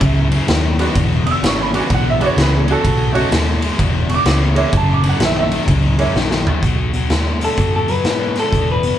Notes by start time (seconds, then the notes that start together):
Already playing: E5
0.00 C#2 F#2 C#3, kick, ride
0.31 F#2 C#3, ride
0.48 D#2 F#2 D#3, snare, ride
0.78 F#2 D#3 G#3 B3 D4 F#4, snare, ride
0.95 E1 E2 B2, kick, ride
1.26 E2 B2 D#6, ride
1.31 E6
1.43 G#1 E2 C#3, snare, ride
1.47 C#6
1.62 B5
1.73 E2 C#3 G#3 B3 D4 F#4, ride
1.79 G#5
1.90 B1 E2 B2, kick, ride
1.94 F#5
2.10 E5
2.19 E2 B2 G#3 B3 D4 F#4, ride
2.26 C#5
2.37 C#2 E2 C#3, snare, ride
2.41 B4
2.57 G#4
2.67 E2 C#3 F#4, ride
2.72 A4
2.84 B1 B2 F#3, kick, ride
3.13 B2 F#3 A3 C#4 D#4 F#4, ride
3.31 D#2 B2 G#3, snare, ride
3.61 B2 G#3, ride
3.78 E1 E2 B2, kick, ride
4.09 E2 B2 C#6, ride
4.14 D6
4.25 C#2 E2 C#3, snare, ride
4.55 E2 C#3 G#3 A#3 C#4 E4, ride
4.73 F#1 F#2 C#3, kick, ride
4.77 A5
4.93 D6
5.04 F#2 C#3, ride
5.09 F#5
5.20 A#1 F#2 D#3, snare, ride
5.25 E5
5.35 D#5
5.41 E5
5.51 F#2 D#3, ride
5.68 C#2 F#2 C#3, kick, ride
5.98 F#2 C#3 G#3 A#3 C#4 E4, ride
6.15 A#1 F#2 D#3, snare
6.31 snare
6.47 F#2 D#3, floor tom
6.62 B1 B2 F#3, kick, closed hi-hat
6.93 B2 F#3, closed hi-hat
7.09 D#2 B2 G#3, snare, closed hi-hat
7.40 B2 G#3, closed hi-hat
7.45 A4
7.57 F#2 B2 F#3, kick, closed hi-hat
7.76 A4
7.88 B2 F#3 B4, closed hi-hat
8.04 G#2 B2 G#3, snare, closed hi-hat
8.35 B2 G#3, snare, closed hi-hat
8.40 A4
8.52 E1 E2 B2, kick, closed hi-hat
8.71 B4
8.83 E2 B2, closed hi-hat